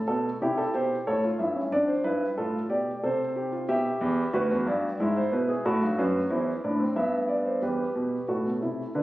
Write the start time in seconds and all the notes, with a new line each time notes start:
0.08 B2 A4
0.41 C3 E4 G4
0.58 A4
0.74 B2 G4 C5
1.07 A2 A4 C#5
1.24 F4
1.39 G2 E4 E5
1.56 C#4
1.72 F2 D4 D5
1.87 C5
2.04 G2 E4 B4
2.38 A2 F4 A4
2.70 B2 G4 D5
3.03 C3 A4 C5
3.36 G4
3.52 F4
3.69 B2 G4 E5
4.01 E2
4.33 D2 F#4 B4
4.51 E2
4.67 G2 D5
5.00 G#2 E4 E5
5.16 C5
5.32 B2 B4
5.49 G#4
5.65 A2 F#4 A4
5.83 G2
5.99 F#2 B4
6.30 E2 E4 C5
6.64 A2 D4 D5
6.80 C4
6.96 G2 B3 E5
7.29 D5
7.46 C5
7.62 E2 G4 B4
7.95 B2
8.28 A2 F#4 A4
8.45 B2
8.61 C3 E4
8.95 D3 D4 B4